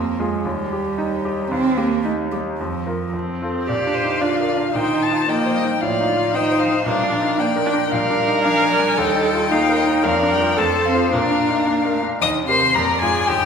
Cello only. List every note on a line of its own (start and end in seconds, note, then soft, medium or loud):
0.00 0.21 A#3 soft
0.19 0.47 G#3 soft
0.46 1.50 G3 medium
1.51 1.78 C4 medium
1.77 2.03 A#3 medium
2.04 2.12 A3 medium
2.32 2.40 G3 soft
2.60 3.12 F3 soft
3.69 4.71 D3 soft
4.76 5.31 D#3 soft
5.30 5.55 F3 soft
5.56 5.64 G3 soft
5.82 6.07 F3 soft
6.08 6.16 D3 soft
6.35 6.60 D#3 soft
6.60 6.68 F3 soft
6.86 7.11 G3 soft
7.12 7.94 F3 soft
7.92 8.47 G3 soft
8.46 8.73 F3 soft
8.71 9.53 G3 soft
9.51 10.06 A#3 soft
10.05 10.31 F3 soft
10.31 10.39 G3 soft
10.57 10.65 A3 soft
10.85 11.12 C4 soft
11.13 11.61 A#3 soft
11.67 11.92 A#3 soft
11.94 12.02 A3 soft
12.20 12.46 D#3 medium
12.47 12.74 C3 soft
12.76 12.84 A#2 soft
13.02 13.10 G#2 soft
13.29 13.45 G2 medium